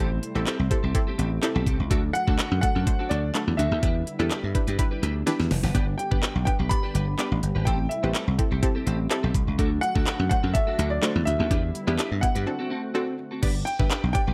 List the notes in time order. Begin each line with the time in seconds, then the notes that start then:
Already playing: G3 C5
0.00 A1 C3 A3 C4 E4 G4 A4
0.11 muted clean electric guitar stroke
0.22 muted clean electric guitar stroke, closed hi-hat
0.35 A1 C4 E4 G4 A4
0.46 C4 G4 A4, clap, closed hi-hat
0.59 C2, muted clean electric guitar stroke
0.70 C4 E4 G4 A4, muted clean electric guitar stroke, kick, closed hi-hat
0.83 C2 C4 G4 A4
0.94 C4 E4 G4 A4, muted clean electric guitar stroke, kick, closed hi-hat
1.07 C4 G4 A4
1.18 A1 C4 G4 A4, closed hi-hat
1.31 muted clean electric guitar stroke
1.42 C4 E4 G4 A4, muted clean electric guitar stroke, clap, closed hi-hat
1.55 B1 C4 G4 A4
1.66 C2 C4 G4 A4, kick, closed hi-hat
1.79 C#2, muted clean electric guitar stroke
1.90 D2 D3 F#3 A3 D4 F#4 A4, kick, closed hi-hat
2.03 muted clean electric guitar stroke
2.13 F#5, muted clean electric guitar stroke, closed hi-hat
2.27 D2 A3 D4 F#4 A4, kick
2.38 D4 F#4 A4, clap, closed hi-hat
2.51 F#2, muted clean electric guitar stroke
2.61 A3 D4 F#4 A4 F#5, muted clean electric guitar stroke, kick, closed hi-hat
2.75 F#2 D4 F#4 A4
2.87 A3 D4 F#4 C5, muted clean electric guitar stroke, kick, closed hi-hat
2.99 D4 F#4 A4
3.09 D2 D4 F#4 A4 D5, closed hi-hat
3.23 muted clean electric guitar stroke
3.35 A3 D4 F#4 A4, muted clean electric guitar stroke, clap, closed hi-hat
3.47 E2, muted clean electric guitar stroke
3.57 D2 D4 F#4 A4 E5, closed hi-hat
3.71 D#2 D4 F#4 A4
3.82 E2 G3 B3 D4 E4 G4 B4, kick, closed hi-hat
3.95 muted clean electric guitar stroke
4.06 muted clean electric guitar stroke, closed hi-hat
4.19 E2 D4 E4 G4 A4 B4
4.30 D4 G4 B4, clap, closed hi-hat
4.43 G2, muted clean electric guitar stroke
4.55 D4 E4 G4 B4, kick, closed hi-hat
4.67 G2 D4 G4 B4, closed hi-hat
4.78 D4 E4 G4 B4, muted clean electric guitar stroke, kick, closed hi-hat
4.91 D4 G4 B4
5.02 D2 D4 G4 B4, closed hi-hat
5.15 muted clean electric guitar stroke
5.26 D4 E4 G4 B4, snare, closed hi-hat
5.39 E2, muted clean electric guitar stroke, snare
5.50 F1, muted clean electric guitar stroke, snare, open hi-hat
5.63 F#1 D4 G4 B4, snare
5.74 G1 D3 G3 B3 D4 G4 B4, kick, closed hi-hat
5.87 muted clean electric guitar stroke
5.98 G5, muted clean electric guitar stroke, closed hi-hat
6.11 G1 B3 D4 G4 B4, kick
6.22 D4 G4 B4, clap, closed hi-hat
6.35 B1, muted clean electric guitar stroke
6.45 B3 D4 G4 B4 G5, muted clean electric guitar stroke, kick, closed hi-hat
6.59 B1 D4 G4 B4
6.69 B3 D4 G4 D5 B5, muted clean electric guitar stroke, kick, closed hi-hat
6.83 D4 G4 B4
6.94 G1 D4 G4 B4, closed hi-hat
7.07 muted clean electric guitar stroke
7.18 B3 D4 G4 B4 D5, clap, closed hi-hat
7.31 A1, muted clean electric guitar stroke
7.42 G1, muted clean electric guitar stroke, closed hi-hat
7.55 G#1 D4 G4 B4
7.65 A1 C3 A3 C4 E4 G4 A4 G5, kick, closed hi-hat
7.79 muted clean electric guitar stroke
7.89 E5, muted clean electric guitar stroke, closed hi-hat
8.03 A1 C4 E4 G4 A4 B4
8.14 C4 G4 A4, clap, closed hi-hat
8.27 C2, muted clean electric guitar stroke
8.38 C4 E4 G4 A4, muted clean electric guitar stroke, kick, closed hi-hat
8.51 C2 C4 G4 A4
8.62 C4 E4 G4 A4, muted clean electric guitar stroke, kick, closed hi-hat
8.75 C4 G4 A4
8.86 A1 C4 G4 A4, closed hi-hat
8.99 muted clean electric guitar stroke
9.10 C4 E4 G4 A4, clap, closed hi-hat
9.23 B1 C4 G4 A4
9.34 C2, muted clean electric guitar stroke, kick, closed hi-hat
9.47 C#2, muted clean electric guitar stroke
9.58 D2 D3 F#3 A3 D4 F#4 A4, kick, closed hi-hat
9.71 muted clean electric guitar stroke
9.81 F#5, muted clean electric guitar stroke, closed hi-hat
9.95 D2 A3 D4 F#4 A4, kick
10.06 D4 F#4 A4, clap, closed hi-hat
10.19 F#2, muted clean electric guitar stroke
10.29 A3 D4 F#4 C5 F#5, muted clean electric guitar stroke, kick, closed hi-hat
10.43 F#2 D4 F#4 A4
10.54 A3 D4 F#4 A4 E5, muted clean electric guitar stroke, kick, closed hi-hat
10.67 D4 F#4 A4
10.78 D2 D4 F#4 A4, closed hi-hat
10.90 D5, muted clean electric guitar stroke
11.02 A3 D4 F#4 A4 C5, clap, closed hi-hat
11.15 E2, muted clean electric guitar stroke
11.25 D2 E5, muted clean electric guitar stroke, closed hi-hat
11.39 D#2 D4 F#4 A4
11.50 E2 G3 B3 D4 E4 G4 B4, kick, closed hi-hat
11.63 muted clean electric guitar stroke
11.74 muted clean electric guitar stroke, closed hi-hat
11.87 E2 B3 D4 E4 G4 B4
11.98 D4 G4 B4, clap, closed hi-hat
12.11 G2, muted clean electric guitar stroke
12.21 B3 D4 E4 G4 F#5, muted clean electric guitar stroke, kick, closed hi-hat
12.35 G2 D4 G4 B4, closed hi-hat
12.46 A3 C4 D4 F#4 A4, muted clean electric guitar stroke
12.59 C4 F#4 A4
12.70 C4 F#4 A4
12.83 muted clean electric guitar stroke
12.94 C4 D4 F#4 A4
13.07 muted clean electric guitar stroke
13.18 muted clean electric guitar stroke
13.31 C4 F#4 A4
13.42 G1 B3 D4 G4 B4 D5, kick, closed hi-hat, crash
13.55 muted clean electric guitar stroke
13.65 G5, muted clean electric guitar stroke, closed hi-hat
13.79 G1 B3 D4 G4 B4 E5, kick
13.90 D4 G4 B4, clap, closed hi-hat
14.03 B1, muted clean electric guitar stroke
14.13 B3 D4 G4 B4 D5 G5, muted clean electric guitar stroke, kick, closed hi-hat
14.27 B1 D4 G4 B4